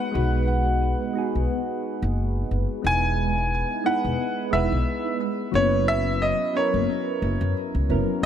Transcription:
0.00 0.12 G#3 loud
0.00 0.13 B3 medium
0.00 0.14 D#4 medium
0.00 0.15 F#4 medium
0.00 0.16 B4 loud
0.00 2.46 F#5 loud
0.12 0.92 B1 medium
0.12 1.11 G#3 medium
0.12 1.11 B3 medium
0.12 1.12 D#4 medium
0.12 1.12 F#4 medium
0.16 1.13 B4 loud
1.13 2.79 G#3 medium
1.13 2.80 B3 medium
1.13 2.81 D#4 medium
1.13 2.81 F#4 medium
1.18 2.82 G#4 medium
1.35 1.45 B1 medium
2.02 2.44 F#1 medium
2.51 2.64 F#1 medium
2.82 3.62 E1 medium
2.82 3.81 G#3 medium
2.82 3.81 B3 medium
2.82 3.82 D#4 medium
2.82 3.82 E4 medium
2.87 3.83 B4 medium
2.87 3.83 G#5 loud
3.84 4.49 G#3 medium
3.84 4.49 B3 medium
3.84 4.49 D#4 medium
3.84 4.50 E4 medium
3.84 4.50 B4 loud
3.84 4.55 F#5 loud
4.05 4.15 E1 medium
4.51 4.66 E1 medium
4.51 5.49 G#3 loud
4.51 5.50 B3 medium
4.51 5.51 E4 medium
4.51 5.16 E5 medium
4.55 5.52 B4 loud
4.72 4.82 B1 medium
5.52 6.31 F#1 medium
5.52 6.50 F#3 loud
5.52 6.51 B3 medium
5.52 6.52 C#4 medium
5.52 6.52 E4 medium
5.52 5.89 C#5 loud
5.56 6.53 B4 loud
5.88 6.23 E5 loud
6.22 6.53 D#5 loud
6.53 7.86 F#3 medium
6.53 7.86 B3 medium
6.53 7.87 C#4 medium
6.53 7.88 E4 medium
6.53 7.53 C#5 medium
6.57 7.88 A#4 medium
6.74 6.84 F#1 medium
7.22 7.36 F#1 medium
7.41 7.52 F#2 medium
7.75 7.91 C#2 medium
7.89 8.03 F#1 medium
7.89 8.20 F#3 medium
7.89 8.20 B3 medium
7.89 8.20 C#4 medium
7.89 8.20 E4 medium
7.89 8.21 A#4 loud
8.22 8.26 G#3 medium
8.22 8.26 B3 medium

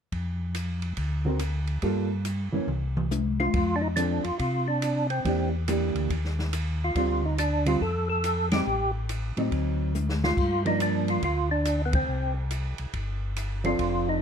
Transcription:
0.12 0.93 F2 medium
0.12 kick soft
0.12 ride soft
0.54 hi-hat pedal soft
0.54 ride medium
0.82 ride soft
0.97 1.79 D2 medium
0.97 kick soft
0.97 ride soft
1.25 1.38 D3 soft
1.25 1.39 C4 soft
1.25 1.39 F#4 medium
1.25 1.39 A#4 medium
1.39 hi-hat pedal soft
1.39 ride medium
1.67 ride soft
1.82 2.49 G2 medium
1.82 2.08 G3 soft
1.82 2.08 A#3 soft
1.82 2.08 F4 soft
1.82 2.08 A4 medium
1.82 kick soft
1.82 ride soft
2.25 hi-hat pedal soft
2.25 ride medium
2.52 2.60 G2 soft
2.52 2.66 E3 medium
2.52 2.66 A#3 soft
2.52 2.67 C#4 medium
2.67 3.49 C2 medium
2.67 mid tom soft
2.97 mid tom medium
3.11 hi-hat pedal medium
3.11 high tom medium
3.40 3.76 F4 medium
3.40 high tom medium
3.54 4.20 F2 medium
3.54 kick medium
3.54 ride medium
3.76 3.82 D4 medium
3.81 3.88 D#4 medium
3.96 4.21 F3 soft
3.96 4.21 C4 soft
3.96 4.25 D4 medium
3.96 4.22 D4 soft
3.96 4.22 A4 soft
3.96 hi-hat pedal medium
3.96 ride medium
4.23 4.32 F2 soft
4.23 4.38 F4 medium
4.23 ride soft
4.39 5.20 C3 medium
4.39 4.68 F4 medium
4.39 kick soft
4.39 ride soft
4.68 5.07 D4 medium
4.82 hi-hat pedal soft
4.82 ride medium
5.10 5.49 C4 medium
5.10 ride soft
5.25 5.91 E2 medium
5.25 5.50 E3 soft
5.25 5.50 A#3 soft
5.25 5.50 D4 soft
5.25 5.50 G4 soft
5.25 kick soft
5.25 ride soft
5.68 6.10 E3 soft
5.68 6.10 A#3 soft
5.68 6.10 D4 soft
5.68 6.11 G4 medium
5.68 hi-hat pedal medium
5.68 ride medium
5.95 6.08 D2 medium
5.95 ride soft
6.10 6.91 D#2 medium
6.10 kick soft
6.10 ride medium
6.25 snare soft
6.39 snare soft
6.53 hi-hat pedal medium
6.53 ride medium
6.84 7.26 F4 medium
6.95 7.77 D2 medium
6.95 7.21 D3 soft
6.95 7.21 G3 soft
6.95 7.21 C4 medium
6.95 7.21 F4 soft
6.95 kick soft
6.95 ride medium
7.25 7.38 D#4 medium
7.38 7.67 D4 medium
7.38 hi-hat pedal medium
7.38 ride medium
7.66 7.79 D3 soft
7.66 7.79 G3 medium
7.66 7.79 C4 medium
7.66 7.80 F4 medium
7.66 7.82 F4 medium
7.66 ride medium
7.81 8.62 F2 medium
7.81 8.08 A4 medium
7.81 kick soft
8.09 8.49 A4 loud
8.24 hi-hat pedal medium
8.24 ride medium
8.51 8.65 G3 medium
8.51 8.65 C4 medium
8.51 8.65 D#4 medium
8.51 8.91 G4 medium
8.51 snare medium
8.51 ride medium
8.66 9.33 A1 medium
9.09 hi-hat pedal medium
9.09 ride medium
9.37 9.50 A2 medium
9.37 9.92 F#3 soft
9.37 9.92 C4 medium
9.37 9.92 D#4 medium
9.37 ride soft
9.52 10.33 D2 medium
9.52 kick soft
9.52 ride soft
9.95 hi-hat pedal soft
9.95 high tom soft
10.09 snare soft
10.24 10.63 F4 loud
10.24 snare medium
10.37 11.19 G2 medium
10.37 kick medium
10.37 crash medium
10.65 11.20 F3 medium
10.65 11.20 A#3 medium
10.65 11.20 D4 medium
10.65 10.80 D#4 medium
10.65 ride soft
10.80 11.10 D4 medium
10.80 hi-hat pedal medium
10.80 ride medium
11.08 11.23 F4 medium
11.08 ride soft
11.22 12.04 D2 medium
11.22 11.49 F4 medium
11.22 kick soft
11.22 ride soft
11.51 11.82 D4 medium
11.65 hi-hat pedal medium
11.65 ride medium
11.86 11.94 B3 medium
11.93 12.34 C4 medium
11.93 kick medium
11.93 ride medium
12.08 12.75 C2 medium
12.50 hi-hat pedal medium
12.50 ride medium
12.78 12.87 C2 soft
12.78 ride soft
12.93 13.75 G1 medium
12.93 kick soft
12.93 ride soft
13.36 hi-hat pedal soft
13.36 ride medium
13.64 14.18 F3 medium
13.64 14.19 C4 medium
13.64 14.19 D4 medium
13.64 14.09 F4 medium
13.64 14.19 A4 medium
13.64 ride soft
13.79 14.22 F1 medium
13.79 kick soft
13.79 ride soft
14.09 14.22 D#4 medium

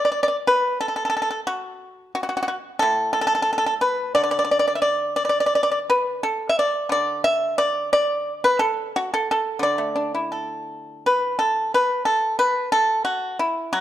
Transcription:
0.05 0.10 D5 medium
0.12 0.19 D5 soft
0.23 0.27 D5 medium
0.28 0.35 D5 soft
0.47 0.80 B4 medium
0.81 0.87 A4 medium
0.88 0.95 A4 soft
0.96 1.03 A4 medium
1.05 1.08 A4 medium
1.10 1.15 A4 medium
1.17 1.21 A4 medium
1.22 1.29 A4 medium
1.31 1.39 A4 soft
1.47 2.12 F#4 medium
2.15 2.22 F#4 medium
2.23 2.28 F#4 medium
2.29 2.36 F#4 medium
2.37 2.41 F#4 medium
2.43 2.47 F#4 medium
2.48 2.57 F#4 soft
2.79 4.16 A2 medium
2.79 3.12 A4 medium
3.13 3.20 A4 medium
3.21 3.26 A4 medium
3.27 3.34 A4 medium
3.35 3.41 A4 medium
3.42 3.50 A4 medium
3.53 3.57 A4 medium
3.58 3.65 A4 medium
3.66 3.73 A4 medium
3.81 4.13 B4 medium
4.15 6.22 D3 soft
4.15 4.22 D5 medium
4.23 4.30 D5 medium
4.31 4.37 D5 medium
4.39 4.43 D5 medium
4.45 4.50 D5 medium
4.51 4.58 D5 medium
4.59 4.66 D5 medium
4.68 4.74 D5 medium
4.75 4.81 E5 medium
4.82 5.14 D5 medium
5.16 5.24 D5 medium
5.25 5.28 D5 soft
5.29 5.38 D5 medium
5.40 5.45 D5 medium
5.46 5.54 D5 medium
5.55 5.62 D5 medium
5.63 5.70 D5 medium
5.71 5.78 D5 soft
5.90 6.21 B4 medium
6.23 6.48 A4 medium
6.49 6.56 E5 medium
6.59 6.89 D5 medium
6.89 8.92 D3 medium
6.89 7.22 D5 medium
7.24 7.55 E5 medium
7.58 7.89 D5 medium
7.93 8.39 D5 medium
8.44 8.59 B4 medium
8.59 8.90 A4 medium
8.96 9.10 F#4 medium
9.14 9.27 A4 medium
9.31 9.60 A4 medium
9.59 11.73 D3 medium
9.59 10.31 D5 medium
9.78 11.22 A3 soft
9.96 10.14 D4 soft
10.15 11.57 E4 soft
10.32 11.06 A4 soft
11.06 11.38 B4 medium
11.39 11.71 A4 medium
11.74 12.05 B4 medium
12.05 12.37 A4 medium
12.39 12.70 B4 medium
12.72 13.04 A4 medium
13.05 13.37 F#4 medium
13.39 13.71 E4 medium
13.73 13.81 F#3 medium
13.73 13.81 F#4 medium

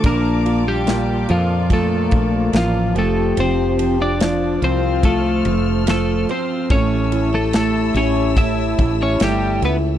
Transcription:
0.00 1.25 A#1 medium
0.00 0.83 D4 medium
0.00 6.67 F4 medium
0.00 6.67 A5 medium
0.00 2.92 D6 medium
0.00 kick loud
0.04 0.63 A#3 medium
0.04 2.92 D4 medium
0.04 0.68 A#4 medium
0.04 2.93 D5 medium
0.04 ride medium
0.46 1.27 F4 medium
0.46 ride medium
0.68 1.26 G3 medium
0.68 1.31 G4 medium
0.86 2.50 A#2 medium
0.86 2.95 A#3 loud
0.86 snare loud
0.86 ride medium
1.29 2.08 F2 medium
1.29 1.68 F3 medium
1.29 2.11 F4 medium
1.29 1.68 F4 medium
1.29 ride medium
1.70 2.92 F3 medium
1.70 2.51 A3 medium
1.70 2.57 A4 medium
1.70 kick medium
1.70 ride medium
2.11 2.51 A#1 loud
2.11 2.93 F4 medium
2.11 kick medium
2.11 ride medium
2.53 2.92 A1 medium
2.53 2.94 F3 medium
2.53 2.94 A#3 medium
2.53 2.94 F4 medium
2.53 snare loud
2.53 ride medium
2.95 3.34 F1 medium
2.95 3.35 F3 medium
2.95 3.36 A3 medium
2.95 4.20 G4 loud
2.95 3.40 A4 medium
2.95 6.67 C5 medium
2.95 ride medium
3.37 4.58 F1 medium
3.37 3.77 F3 medium
3.37 3.97 C4 medium
3.37 4.02 C5 medium
3.37 ride medium
3.79 4.20 F3 medium
3.79 ride medium
4.02 4.59 D4 medium
4.02 4.64 D5 medium
4.20 4.61 F3 medium
4.20 6.39 F4 loud
4.20 snare loud
4.20 ride medium
4.62 5.41 C2 medium
4.62 5.03 F3 medium
4.62 5.02 C4 medium
4.62 5.05 C5 loud
4.62 6.68 F6 medium
4.62 ride medium
5.03 5.45 F3 medium
5.03 5.84 A3 medium
5.03 5.89 A4 medium
5.03 kick medium
5.03 ride medium
5.45 6.25 F1 loud
5.45 5.86 F3 medium
5.45 ride medium
5.87 6.68 F3 medium
5.87 6.27 A3 medium
5.87 6.30 A4 medium
5.87 snare loud
5.87 ride medium
6.29 6.69 C4 medium
6.29 6.71 C5 loud
6.29 ride medium
6.69 7.91 A1 loud
6.69 7.53 A3 medium
6.69 7.29 C#4 medium
6.69 9.98 E4 loud
6.69 9.98 G4 medium
6.69 9.98 C#5 medium
6.69 7.35 C#5 medium
6.69 9.98 A5 medium
6.69 9.98 E6 medium
6.69 kick loud
6.69 ride medium
7.12 7.96 E4 medium
7.12 ride medium
7.34 7.53 A3 medium
7.34 7.55 A4 medium
7.53 8.36 A3 medium
7.53 7.93 A3 medium
7.53 7.93 A4 medium
7.53 snare loud
7.53 ride medium
7.94 8.74 A1 medium
7.94 8.35 C#4 medium
7.94 8.77 E4 medium
7.94 8.38 C#5 medium
7.94 ride medium
8.37 9.19 A3 medium
8.37 8.96 E4 medium
8.37 8.96 E5 medium
8.37 kick medium
8.37 ride medium
8.79 9.17 A1 loud
8.79 9.61 E4 medium
8.79 kick medium
8.79 ride medium
9.02 9.20 C#4 medium
9.02 9.22 C#5 medium
9.20 9.59 G1 medium
9.20 9.61 G3 medium
9.20 9.98 A3 medium
9.20 9.64 G4 medium
9.20 snare loud
9.20 ride medium
9.62 9.98 C#2 medium
9.62 9.76 B3 medium
9.62 9.98 E4 medium
9.62 9.76 B4 medium
9.62 ride medium

